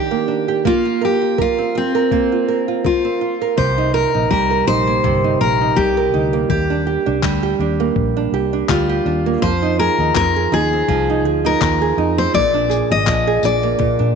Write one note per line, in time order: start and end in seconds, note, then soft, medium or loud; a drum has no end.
0.00 0.73 D#3 medium
0.00 0.11 A#3 medium
0.00 0.27 D4 medium
0.00 0.47 G4 medium
0.00 0.62 G4 medium
0.11 0.65 A#3 soft
0.28 0.73 D4 medium
0.48 0.73 G4 medium
0.65 2.11 A#3 medium
0.65 1.04 F4 medium
0.65 kick loud
0.85 1.21 F4 medium
1.01 1.37 G4 medium
1.01 1.38 A#4 soft
1.22 1.74 F4 soft
1.38 1.78 F4 medium
1.38 1.94 A#4 medium
1.38 kick loud
1.59 3.04 C4 soft
1.75 3.18 C4 medium
1.75 2.31 F4 medium
1.95 2.48 A#4 medium
2.12 4.30 A#3 medium
2.12 kick loud
2.32 2.67 F4 soft
2.48 2.84 A#4 medium
2.68 3.20 F4 medium
2.84 3.57 F4 medium
2.84 3.41 A#4 medium
2.84 kick medium
3.05 3.97 C4 soft
3.21 3.66 F4 soft
3.42 3.94 A#4 medium
3.57 4.04 C2 medium
3.57 5.03 C3 medium
3.57 3.94 C5 medium
3.57 kick loud
3.78 4.14 D#4 medium
3.94 4.29 A#4 medium
3.94 4.50 A#4 medium
4.14 4.28 A#1 medium
4.14 4.67 D#4 medium
4.31 4.61 C2 medium
4.31 5.77 G3 medium
4.31 4.67 A#4 medium
4.31 kick loud
4.50 5.41 A#4 medium
4.67 4.97 A#1 medium
4.67 5.24 D#4 medium
4.67 5.40 C5 medium
4.87 6.33 A#3 medium
5.04 5.34 G1 medium
5.04 6.50 C3 medium
5.04 kick loud
5.24 5.61 D#4 soft
5.41 5.70 A#1 medium
5.41 5.78 A#4 medium
5.41 5.97 A#4 medium
5.61 6.13 D#4 medium
5.76 6.07 C2 medium
5.76 7.22 G3 medium
5.76 6.49 G4 medium
5.76 kick loud
5.97 6.86 A#4 medium
6.14 6.44 D2 medium
6.14 6.70 D#4 medium
6.33 7.79 A#3 medium
6.50 6.96 D#2 medium
6.50 8.69 G4 medium
6.50 kick loud
6.70 7.05 D4 medium
6.87 7.42 G4 medium
7.06 7.20 C2 medium
7.06 7.59 D4 medium
7.23 7.53 D2 medium
7.23 8.68 G3 medium
7.23 kick loud
7.23 clap loud
7.43 8.33 G4 medium
7.59 7.89 D#2 medium
7.59 8.15 D4 medium
7.80 9.25 A#3 medium
7.96 8.26 A#1 medium
7.96 kick loud
8.17 8.52 D4 soft
8.32 8.62 C2 medium
8.32 8.88 G4 medium
8.53 9.05 D4 medium
8.69 8.99 D2 medium
8.69 9.42 G3 medium
8.69 9.45 F4 medium
8.69 kick loud
8.69 clap loud
8.89 9.50 G4 medium
9.06 9.35 D#2 medium
9.06 9.50 D4 medium
9.26 9.50 A#3 medium
9.42 9.89 F2 loud
9.42 10.88 F3 medium
9.42 9.79 C5 medium
9.42 kick loud
9.63 9.99 D#4 medium
9.79 10.36 G#4 medium
9.79 10.13 A#4 medium
9.99 10.12 D#2 medium
9.99 10.51 D#4 medium
10.15 10.45 F2 medium
10.15 10.72 C4 medium
10.15 10.53 A#4 medium
10.15 kick loud
10.15 clap loud
10.36 11.25 G#4 medium
10.52 10.82 D#2 medium
10.52 11.08 D#4 medium
10.52 11.48 G#4 medium
10.73 11.61 C4 medium
10.88 11.25 C2 loud
10.88 13.07 F3 medium
10.88 kick loud
11.10 11.43 D#4 medium
11.25 11.54 D2 medium
11.25 11.81 G#4 medium
11.45 11.97 D#4 medium
11.45 12.18 A#4 loud
11.61 11.91 D#2 medium
11.61 12.17 C4 medium
11.61 kick loud
11.61 clap loud
11.82 12.57 G#4 medium
11.97 12.27 F2 medium
11.97 12.42 D#4 medium
12.18 12.42 C4 medium
12.18 12.34 C5 medium
12.34 12.81 A#1 loud
12.34 13.77 A#2 medium
12.34 12.91 D5 loud
12.34 kick loud
12.54 12.90 D4 medium
12.70 13.26 G#4 medium
12.70 tambourine medium
12.91 13.04 G#1 medium
12.91 13.45 D#5 medium
13.07 13.37 A#1 medium
13.07 14.15 F3 medium
13.07 kick loud
13.07 clap loud
13.27 14.15 G#4 medium
13.43 13.73 A#1 medium
13.43 13.98 D4 medium
13.43 14.15 D5 medium
13.43 tambourine medium
13.63 14.15 A#3 medium
13.79 14.15 A#2 medium
13.79 kick loud
13.99 14.13 A#2 loud
13.99 14.15 D4 medium